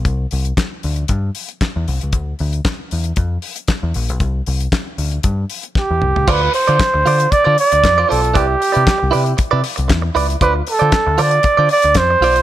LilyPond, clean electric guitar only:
\new Staff \with { instrumentName = "Clean electric guitar" } { \time 4/4 \key d \dorian \tempo 4 = 116 r1 | r1 | r1 | <f' c'' d''>8 r16 <f' c'' d''>16 r8 <f' c'' d''>8 r16 <f' c'' d''>8 r8 <f' c'' d''>16 <f' c'' d''>8 |
<e' b' d''>8 r16 <e' b' d''>16 r8 <e' b' d''>8 r16 <e' b' d''>8 r8. <e' b' d''>8 | <f' c'' d''>8 r16 <f' c'' d''>16 r8 <f' c'' d''>8 r16 <f' c'' d''>8 r8. <f' c'' d''>8 | }